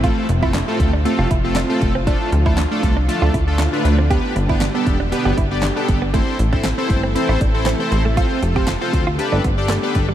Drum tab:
HH |x-x-x-x-x-x-x-x-|x-x-x-x-x-x-x-x-|x-x-x-x-x-x-x-x-|x-x-x-x-x-x-x-x-|
CP |----x-------x---|----x-------x---|----x-------x---|----x-------x---|
SD |----o-------o---|----o-------o---|----o-------o---|----o-------o---|
BD |o--o--o---o---o-|o--o--o---o-----|o--o--o---o---o-|o--o--o---o-----|

HH |x-x-x-x-x-x-x-x-|
CP |----x-------x---|
SD |----o-------o---|
BD |o--o--o---o---o-|